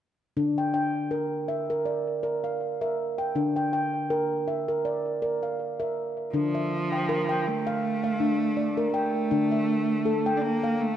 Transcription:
0.37 D3 D4
0.58 G5
0.74 G5
1.11 A#4
1.48 E5
1.70 A#4
1.85 D5
2.23 A#4
2.44 F5
2.81 A#4 E5
3.18 G5
3.35 D3 D4
3.56 G5
3.73 G5
4.10 A#4
4.48 E5
4.68 A#4
4.85 D5
5.22 A#4
5.43 F5
5.80 A#4 E5
6.33 D3 F3 D4
6.55 E5
6.92 G5
7.09 A#4
7.29 G5
7.47 A3
7.67 F5
8.04 F5
8.20 D4
8.57 D5
8.77 A#4
8.94 A3 G5
9.31 D3 D4
9.52 E5
10.05 A4
10.26 G5
10.37 D4
10.42 A#3
10.64 F5
10.80 A3

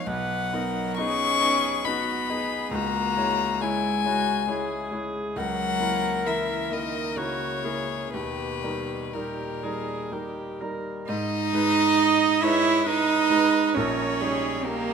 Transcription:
0.07 B1 F#3 B4 F#5
0.53 B3 D#4 A#4 D#5
0.97 B3 C#4 D#4 G#4 D#5 C#6
1.41 B3 D#4 D#5
1.85 B3 D#4 F#4 D#5 B5
2.29 B3 D#4 G#4 D#5
2.71 C#2 A#3 F#4 A#5
3.17 G#3 E4 C#5
3.60 G#3 E4 C#5 G#5
4.04 G#3 E4 F#4 C#5
4.47 G#3 E4 G#4 C#5
4.91 G#3 E4 C#5
5.36 C#2 F#3 A#4 F#5
5.79 A#3 E4 A#4
6.25 E3 A#3 E4 A#4 E5
6.70 D#3 A#3 E4 A#4 D#5
7.16 C#3 A#3 E4 F#4 A#4 C#5
7.64 A#3 E4 G#4 A#4
8.13 D#2 B2 G4 B4
8.63 G3 D#4 A#4
9.13 A#2 G3 D#4 G4 A#4
9.63 G3 D#4 G#4 A#4
10.12 G3 D#4 G4 A#4
10.61 G3 D#4 A#4
11.06 G#2 D#4 D#5
11.53 G#3 D#4 B4
11.98 D#5
12.40 G#3 D#4 E4 B4 C#5 E5
12.86 D#4 B4 D#5
13.30 G#3 D#4 B4
13.75 A#1 C#4 A#4 C#5
14.20 G3 D#4 G#4 C#5
14.65 A#3 G4 A#4

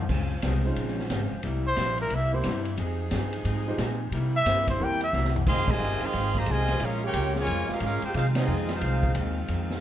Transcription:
Already playing: F3 F4 C5
0.09 C#2 C#3 F3 G#3 C4 C#4, kick, crash
0.42 C2 C#3 F3 G#3 C4, snare, hi-hat pedal, ride
0.64 G#3 C#4 D#4 F4 C5
0.76 A#1 C#3 F3 G#3 C4, ride
0.88 snare
0.99 snare
1.10 G#1 C#3 F3 G#3 C4, snare, hi-hat pedal, ride
1.32 muted upright bass stroke
1.43 C2 C3 G3 A#3 E4, ride
1.67 C5
1.76 A#1 C3 G3 A#3 E4, snare, hi-hat pedal, ride
1.97 ride
2.02 A#4
2.10 C2 C3 G3 A#3 E4, ride
2.15 E5
2.32 A#3 C4 E4 G4 C5
2.43 G2 C3 G3 A#3 E4, snare, hi-hat pedal, ride
2.65 ride
2.77 F2 F3 C4 D#4 G#4, ride
3.11 G2 F3 C4 D#4 G#4, snare, hi-hat pedal, ride
3.33 ride
3.45 G#2 F3 C4 D#4 G#4, ride
3.67 G#3 D#4 F4 G4 C5
3.78 A#2 F3 C4 D#4 G#4, snare, hi-hat pedal, ride
4.12 C3 G3 A#3 E4, ride
4.37 E5
4.45 G2 C3 G3 A#3 C4 E4 G4 C5, snare, hi-hat pedal, ride
4.67 C5, kick, ride
4.79 E2 C3 G3 A#3 C4 E4 G4 A#4
4.84 G5
5.01 E5, ride
5.13 C2 C3 G3 A#3 E4, snare, hi-hat pedal
5.25 snare
5.36 floor tom
5.46 F1 D#3 F3 G#3 C4 D#4 F4 G#4 D#5 F5 C6, kick, crash
5.68 C3 D#3 G#3 F4 C5 D#5 G#5, kick, crash
5.79 G1 F3 C4 D#4 G#4, hi-hat pedal
6.01 D#3 G#3 C4, muted upright bass stroke, ride
6.05 G#4 D#5 F5 C6
6.13 G#1 F3 C4 D#4 G#4, snare, ride
6.35 A#3 C5 D#5 A#5, kick
6.39 G4
6.46 C2 C3 D#3 F3 G#3 C4 D#4 G#4, hi-hat pedal, ride
6.50 F4 C5 D#5 G#5
6.68 snare, ride
6.80 A#1 A#2 C#3 G#3 A#3 C#4 F4 G#4, ride
6.84 A#4 F5
7.04 G#3 C#4 F4 G4 A#4 C#5 G5
7.13 C#2 A#2 G#3 C#4 F4, hi-hat pedal, ride
7.25 snare
7.36 C#3 F3 G#3 F4 A#4 C#5, snare
7.40 G#5
7.47 F2 A#2 G#3 C#4, ride
7.51 F4
7.58 snare
7.69 G#3 C#4 F4, muted upright bass stroke, snare
7.73 C#4 G#4 A#4 F5
7.80 G#2 A#2 G#3 C#4 F4, hi-hat pedal, ride
7.84 C#4 G#4 A#4 F5
8.02 D#4 G4 G#4 C5 G5, muted upright bass stroke, ride
8.14 F2 C3 D#3 G#3 C4 D#4 F4 G#4 C5 F5, ride
8.35 G#3 C4 D#4, snare, ride
8.40 C4 F4 G#4 D#5
8.48 F2 D#3 G#3 C4, hi-hat pedal
8.69 G#3 C4 F4, snare, ride
8.73 D#4 G#4 C5 F5
8.81 C2 F2 D#3 G#3 C4, ride
9.03 kick
9.15 D#2 F2 D#3 G#3 C4, hi-hat pedal, ride
9.48 F2 D#3 G#3 C4, ride
9.70 snare

